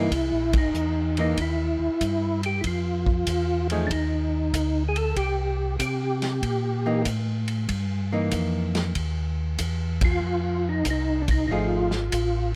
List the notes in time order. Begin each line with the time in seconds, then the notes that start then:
Already playing: E3 A#3 D#4 E4
0.11 C2, kick, ride
0.32 A#1
0.52 G1, kick, ride
0.58 D#4
0.74 E2, hi-hat pedal
1.17 E3 A#3 D#4, ride
1.37 D#2, kick, ride
1.42 E4
1.79 D#2
2.01 G2, kick, hi-hat pedal, ride
2.43 G4, ride
2.61 F2 E4, kick, ride
2.67 F4
3.06 kick
3.27 E2, kick, hi-hat pedal, ride
3.70 F3 A3 D#4 G#4, ride
3.87 D#2 D4, kick, ride
3.91 D#4
4.53 D2, kick, hi-hat pedal, ride
4.88 G#4
4.96 A4, ride
5.16 C2 G4, kick, ride
5.79 C3 G4, kick, hi-hat pedal, ride
6.22 snare, ride
6.42 A#2, kick, ride
6.86 E3 A#3 D#4
7.05 A2, kick, hi-hat pedal, ride
7.48 ride
7.68 G2, kick, ride
8.12 E3 A#3 D#4
8.31 F2, kick, hi-hat pedal, ride
8.75 snare, ride
8.95 D#2, kick, ride
9.58 E2, kick, hi-hat pedal, ride
10.01 F4, kick, ride
10.22 F2
10.69 D#4
10.85 C2, kick, hi-hat pedal, ride
10.90 D#4
11.22 D4
11.28 D#4, kick, ride
11.47 G#1 F3 D#4 F4, kick
11.52 A3 D#4 G#4
11.91 snare
12.12 A1, kick, hi-hat pedal, ride